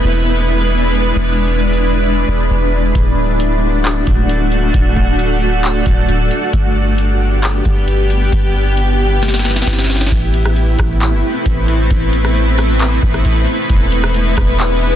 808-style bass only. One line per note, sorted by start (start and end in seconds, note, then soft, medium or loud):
0.04 1.12 E1 loud
1.16 2.24 E1 loud
2.28 2.49 E1 loud
2.50 2.93 E1 loud
2.95 4.03 D1 loud
4.07 4.72 D1 loud
4.74 4.96 D1 loud
4.97 5.83 D1 loud
5.86 6.08 D1 loud
6.09 6.30 D1 loud
6.53 7.61 G1 loud
7.65 8.30 G1 loud
8.32 9.63 G1 loud
9.67 10.10 G1 loud
10.11 10.76 A1 loud
10.79 11.14 A1 loud
11.12 11.23 G1 loud
11.46 11.89 A1 loud
11.91 12.99 A1 loud
13.03 13.24 A1 loud
13.25 13.46 A1 loud
13.70 14.34 E1 loud
14.37 14.96 E1 loud